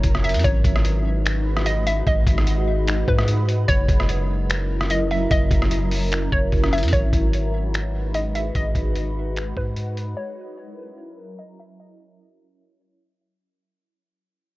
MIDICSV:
0, 0, Header, 1, 5, 480
1, 0, Start_track
1, 0, Key_signature, 5, "minor"
1, 0, Tempo, 405405
1, 526, Time_signature, 4, 2, 24, 8
1, 17250, End_track
2, 0, Start_track
2, 0, Title_t, "Synth pluck"
2, 0, Program_c, 0, 84
2, 0, Note_on_c, 0, 73, 83
2, 257, Note_off_c, 0, 73, 0
2, 283, Note_on_c, 0, 76, 82
2, 512, Note_off_c, 0, 76, 0
2, 524, Note_on_c, 0, 73, 105
2, 1917, Note_off_c, 0, 73, 0
2, 1964, Note_on_c, 0, 75, 90
2, 2192, Note_off_c, 0, 75, 0
2, 2209, Note_on_c, 0, 76, 85
2, 2435, Note_off_c, 0, 76, 0
2, 2453, Note_on_c, 0, 75, 108
2, 3601, Note_off_c, 0, 75, 0
2, 3651, Note_on_c, 0, 71, 91
2, 3876, Note_off_c, 0, 71, 0
2, 4361, Note_on_c, 0, 73, 112
2, 5756, Note_off_c, 0, 73, 0
2, 5808, Note_on_c, 0, 75, 83
2, 6035, Note_off_c, 0, 75, 0
2, 6052, Note_on_c, 0, 76, 88
2, 6277, Note_off_c, 0, 76, 0
2, 6290, Note_on_c, 0, 75, 106
2, 7440, Note_off_c, 0, 75, 0
2, 7486, Note_on_c, 0, 73, 84
2, 7937, Note_off_c, 0, 73, 0
2, 7966, Note_on_c, 0, 76, 81
2, 8194, Note_off_c, 0, 76, 0
2, 8204, Note_on_c, 0, 73, 101
2, 9597, Note_off_c, 0, 73, 0
2, 9646, Note_on_c, 0, 75, 84
2, 9874, Note_off_c, 0, 75, 0
2, 9890, Note_on_c, 0, 76, 81
2, 10116, Note_off_c, 0, 76, 0
2, 10135, Note_on_c, 0, 75, 99
2, 11282, Note_off_c, 0, 75, 0
2, 11333, Note_on_c, 0, 71, 86
2, 11557, Note_off_c, 0, 71, 0
2, 12039, Note_on_c, 0, 73, 98
2, 13435, Note_off_c, 0, 73, 0
2, 13487, Note_on_c, 0, 75, 82
2, 13714, Note_off_c, 0, 75, 0
2, 13732, Note_on_c, 0, 76, 84
2, 13957, Note_off_c, 0, 76, 0
2, 13972, Note_on_c, 0, 75, 107
2, 15121, Note_off_c, 0, 75, 0
2, 15165, Note_on_c, 0, 73, 81
2, 15616, Note_off_c, 0, 73, 0
2, 15644, Note_on_c, 0, 76, 82
2, 15873, Note_off_c, 0, 76, 0
2, 17250, End_track
3, 0, Start_track
3, 0, Title_t, "Ambient pad"
3, 0, Program_c, 1, 92
3, 0, Note_on_c, 1, 54, 84
3, 0, Note_on_c, 1, 61, 78
3, 0, Note_on_c, 1, 64, 76
3, 0, Note_on_c, 1, 70, 92
3, 487, Note_off_c, 1, 70, 0
3, 488, Note_off_c, 1, 54, 0
3, 488, Note_off_c, 1, 61, 0
3, 488, Note_off_c, 1, 64, 0
3, 527, Note_on_c, 1, 56, 88
3, 527, Note_on_c, 1, 63, 79
3, 527, Note_on_c, 1, 66, 78
3, 527, Note_on_c, 1, 71, 95
3, 4328, Note_off_c, 1, 56, 0
3, 4328, Note_off_c, 1, 63, 0
3, 4328, Note_off_c, 1, 66, 0
3, 4328, Note_off_c, 1, 71, 0
3, 4364, Note_on_c, 1, 61, 78
3, 4365, Note_on_c, 1, 54, 84
3, 4365, Note_on_c, 1, 64, 80
3, 4365, Note_on_c, 1, 70, 96
3, 8166, Note_off_c, 1, 61, 0
3, 8167, Note_off_c, 1, 54, 0
3, 8167, Note_off_c, 1, 64, 0
3, 8167, Note_off_c, 1, 70, 0
3, 8205, Note_on_c, 1, 56, 83
3, 8205, Note_on_c, 1, 63, 75
3, 8205, Note_on_c, 1, 71, 92
3, 8206, Note_on_c, 1, 66, 80
3, 12007, Note_off_c, 1, 56, 0
3, 12007, Note_off_c, 1, 63, 0
3, 12007, Note_off_c, 1, 66, 0
3, 12007, Note_off_c, 1, 71, 0
3, 12044, Note_on_c, 1, 61, 77
3, 12045, Note_on_c, 1, 54, 83
3, 12046, Note_on_c, 1, 64, 78
3, 12046, Note_on_c, 1, 70, 94
3, 15846, Note_off_c, 1, 61, 0
3, 15847, Note_off_c, 1, 54, 0
3, 15847, Note_off_c, 1, 64, 0
3, 15847, Note_off_c, 1, 70, 0
3, 17250, End_track
4, 0, Start_track
4, 0, Title_t, "808-style bass"
4, 0, Program_c, 2, 38
4, 46, Note_on_c, 2, 30, 108
4, 405, Note_on_c, 2, 42, 92
4, 423, Note_off_c, 2, 30, 0
4, 519, Note_off_c, 2, 42, 0
4, 525, Note_on_c, 2, 32, 112
4, 756, Note_off_c, 2, 32, 0
4, 762, Note_on_c, 2, 32, 107
4, 2396, Note_off_c, 2, 32, 0
4, 2446, Note_on_c, 2, 32, 107
4, 2676, Note_off_c, 2, 32, 0
4, 2682, Note_on_c, 2, 32, 105
4, 3605, Note_off_c, 2, 32, 0
4, 3646, Note_on_c, 2, 44, 102
4, 4337, Note_off_c, 2, 44, 0
4, 4365, Note_on_c, 2, 30, 111
4, 4596, Note_off_c, 2, 30, 0
4, 4602, Note_on_c, 2, 30, 110
4, 6236, Note_off_c, 2, 30, 0
4, 6285, Note_on_c, 2, 30, 109
4, 6515, Note_off_c, 2, 30, 0
4, 6522, Note_on_c, 2, 30, 113
4, 7445, Note_off_c, 2, 30, 0
4, 7486, Note_on_c, 2, 30, 108
4, 7716, Note_off_c, 2, 30, 0
4, 7727, Note_on_c, 2, 30, 109
4, 8086, Note_on_c, 2, 42, 97
4, 8103, Note_off_c, 2, 30, 0
4, 8199, Note_off_c, 2, 42, 0
4, 8206, Note_on_c, 2, 32, 106
4, 8436, Note_off_c, 2, 32, 0
4, 8443, Note_on_c, 2, 32, 108
4, 10077, Note_off_c, 2, 32, 0
4, 10126, Note_on_c, 2, 32, 109
4, 10356, Note_off_c, 2, 32, 0
4, 10363, Note_on_c, 2, 32, 109
4, 11285, Note_off_c, 2, 32, 0
4, 11326, Note_on_c, 2, 44, 101
4, 12017, Note_off_c, 2, 44, 0
4, 17250, End_track
5, 0, Start_track
5, 0, Title_t, "Drums"
5, 41, Note_on_c, 9, 42, 86
5, 46, Note_on_c, 9, 36, 92
5, 160, Note_off_c, 9, 42, 0
5, 165, Note_off_c, 9, 36, 0
5, 175, Note_on_c, 9, 37, 94
5, 285, Note_on_c, 9, 42, 47
5, 293, Note_off_c, 9, 37, 0
5, 345, Note_off_c, 9, 42, 0
5, 345, Note_on_c, 9, 42, 56
5, 406, Note_off_c, 9, 42, 0
5, 406, Note_on_c, 9, 42, 72
5, 466, Note_off_c, 9, 42, 0
5, 466, Note_on_c, 9, 42, 82
5, 526, Note_off_c, 9, 42, 0
5, 526, Note_on_c, 9, 36, 119
5, 526, Note_on_c, 9, 42, 86
5, 644, Note_off_c, 9, 36, 0
5, 644, Note_off_c, 9, 42, 0
5, 762, Note_on_c, 9, 36, 107
5, 766, Note_on_c, 9, 42, 85
5, 881, Note_off_c, 9, 36, 0
5, 885, Note_off_c, 9, 42, 0
5, 896, Note_on_c, 9, 37, 93
5, 1004, Note_on_c, 9, 42, 80
5, 1015, Note_off_c, 9, 37, 0
5, 1122, Note_off_c, 9, 42, 0
5, 1486, Note_on_c, 9, 42, 82
5, 1497, Note_on_c, 9, 26, 127
5, 1605, Note_off_c, 9, 42, 0
5, 1615, Note_off_c, 9, 26, 0
5, 1852, Note_on_c, 9, 37, 97
5, 1962, Note_on_c, 9, 42, 84
5, 1971, Note_off_c, 9, 37, 0
5, 2081, Note_off_c, 9, 42, 0
5, 2209, Note_on_c, 9, 42, 74
5, 2328, Note_off_c, 9, 42, 0
5, 2446, Note_on_c, 9, 36, 121
5, 2446, Note_on_c, 9, 42, 86
5, 2564, Note_off_c, 9, 36, 0
5, 2564, Note_off_c, 9, 42, 0
5, 2682, Note_on_c, 9, 36, 111
5, 2687, Note_on_c, 9, 42, 85
5, 2801, Note_off_c, 9, 36, 0
5, 2805, Note_off_c, 9, 42, 0
5, 2816, Note_on_c, 9, 37, 94
5, 2923, Note_on_c, 9, 42, 83
5, 2935, Note_off_c, 9, 37, 0
5, 3042, Note_off_c, 9, 42, 0
5, 3405, Note_on_c, 9, 42, 78
5, 3416, Note_on_c, 9, 26, 126
5, 3524, Note_off_c, 9, 42, 0
5, 3534, Note_off_c, 9, 26, 0
5, 3646, Note_on_c, 9, 36, 96
5, 3764, Note_off_c, 9, 36, 0
5, 3772, Note_on_c, 9, 37, 99
5, 3882, Note_on_c, 9, 42, 82
5, 3890, Note_off_c, 9, 37, 0
5, 4000, Note_off_c, 9, 42, 0
5, 4128, Note_on_c, 9, 42, 75
5, 4247, Note_off_c, 9, 42, 0
5, 4365, Note_on_c, 9, 36, 121
5, 4365, Note_on_c, 9, 42, 85
5, 4483, Note_off_c, 9, 42, 0
5, 4484, Note_off_c, 9, 36, 0
5, 4602, Note_on_c, 9, 36, 109
5, 4607, Note_on_c, 9, 42, 79
5, 4720, Note_off_c, 9, 36, 0
5, 4725, Note_off_c, 9, 42, 0
5, 4737, Note_on_c, 9, 37, 93
5, 4844, Note_on_c, 9, 42, 83
5, 4855, Note_off_c, 9, 37, 0
5, 4962, Note_off_c, 9, 42, 0
5, 5325, Note_on_c, 9, 42, 78
5, 5335, Note_on_c, 9, 26, 126
5, 5443, Note_off_c, 9, 42, 0
5, 5454, Note_off_c, 9, 26, 0
5, 5692, Note_on_c, 9, 37, 97
5, 5801, Note_on_c, 9, 42, 85
5, 5810, Note_off_c, 9, 37, 0
5, 5920, Note_off_c, 9, 42, 0
5, 6048, Note_on_c, 9, 42, 73
5, 6167, Note_off_c, 9, 42, 0
5, 6285, Note_on_c, 9, 36, 121
5, 6285, Note_on_c, 9, 42, 86
5, 6403, Note_off_c, 9, 42, 0
5, 6404, Note_off_c, 9, 36, 0
5, 6522, Note_on_c, 9, 36, 105
5, 6526, Note_on_c, 9, 42, 83
5, 6640, Note_off_c, 9, 36, 0
5, 6644, Note_off_c, 9, 42, 0
5, 6655, Note_on_c, 9, 37, 93
5, 6762, Note_on_c, 9, 42, 83
5, 6774, Note_off_c, 9, 37, 0
5, 6881, Note_off_c, 9, 42, 0
5, 7003, Note_on_c, 9, 46, 64
5, 7122, Note_off_c, 9, 46, 0
5, 7245, Note_on_c, 9, 42, 80
5, 7255, Note_on_c, 9, 26, 123
5, 7363, Note_off_c, 9, 42, 0
5, 7374, Note_off_c, 9, 26, 0
5, 7486, Note_on_c, 9, 36, 87
5, 7604, Note_off_c, 9, 36, 0
5, 7722, Note_on_c, 9, 42, 81
5, 7727, Note_on_c, 9, 36, 88
5, 7841, Note_off_c, 9, 42, 0
5, 7845, Note_off_c, 9, 36, 0
5, 7857, Note_on_c, 9, 37, 90
5, 7966, Note_on_c, 9, 42, 48
5, 7976, Note_off_c, 9, 37, 0
5, 8027, Note_off_c, 9, 42, 0
5, 8027, Note_on_c, 9, 42, 60
5, 8086, Note_off_c, 9, 42, 0
5, 8086, Note_on_c, 9, 42, 70
5, 8147, Note_off_c, 9, 42, 0
5, 8147, Note_on_c, 9, 42, 83
5, 8206, Note_on_c, 9, 36, 114
5, 8207, Note_off_c, 9, 42, 0
5, 8207, Note_on_c, 9, 42, 80
5, 8325, Note_off_c, 9, 36, 0
5, 8325, Note_off_c, 9, 42, 0
5, 8443, Note_on_c, 9, 36, 103
5, 8447, Note_on_c, 9, 42, 80
5, 8561, Note_off_c, 9, 36, 0
5, 8566, Note_off_c, 9, 42, 0
5, 8684, Note_on_c, 9, 42, 77
5, 8803, Note_off_c, 9, 42, 0
5, 9166, Note_on_c, 9, 42, 77
5, 9177, Note_on_c, 9, 26, 115
5, 9285, Note_off_c, 9, 42, 0
5, 9295, Note_off_c, 9, 26, 0
5, 9642, Note_on_c, 9, 42, 83
5, 9761, Note_off_c, 9, 42, 0
5, 9890, Note_on_c, 9, 42, 72
5, 10008, Note_off_c, 9, 42, 0
5, 10126, Note_on_c, 9, 36, 112
5, 10126, Note_on_c, 9, 42, 80
5, 10245, Note_off_c, 9, 36, 0
5, 10245, Note_off_c, 9, 42, 0
5, 10362, Note_on_c, 9, 36, 104
5, 10368, Note_on_c, 9, 42, 75
5, 10481, Note_off_c, 9, 36, 0
5, 10486, Note_off_c, 9, 42, 0
5, 10604, Note_on_c, 9, 42, 78
5, 10722, Note_off_c, 9, 42, 0
5, 11086, Note_on_c, 9, 42, 77
5, 11096, Note_on_c, 9, 26, 116
5, 11205, Note_off_c, 9, 42, 0
5, 11215, Note_off_c, 9, 26, 0
5, 11326, Note_on_c, 9, 36, 83
5, 11444, Note_off_c, 9, 36, 0
5, 11562, Note_on_c, 9, 42, 81
5, 11680, Note_off_c, 9, 42, 0
5, 11809, Note_on_c, 9, 42, 75
5, 11927, Note_off_c, 9, 42, 0
5, 17250, End_track
0, 0, End_of_file